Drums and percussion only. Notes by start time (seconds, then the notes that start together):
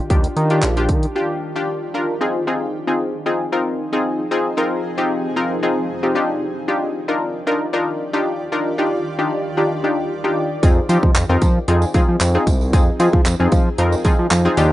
0.10 kick, closed hi-hat
0.24 closed hi-hat
0.37 closed hi-hat
0.50 closed hi-hat
0.62 clap, closed hi-hat
0.77 closed hi-hat
0.89 kick, closed hi-hat
1.03 closed hi-hat
10.63 kick, closed hi-hat, tambourine
10.89 closed hi-hat, tambourine
11.03 kick
11.15 clap, closed hi-hat, tambourine
11.42 kick, closed hi-hat, tambourine
11.68 closed hi-hat
11.82 tambourine
11.94 kick, closed hi-hat, tambourine
12.21 clap, closed hi-hat, tambourine
12.47 kick, closed hi-hat, tambourine
12.61 tambourine
12.73 kick, closed hi-hat, tambourine
13.00 closed hi-hat, tambourine
13.13 kick
13.26 clap, closed hi-hat, tambourine
13.52 kick, closed hi-hat, tambourine
13.78 closed hi-hat
13.92 tambourine
14.04 kick, closed hi-hat, tambourine
14.31 clap, closed hi-hat, tambourine
14.57 closed hi-hat, tambourine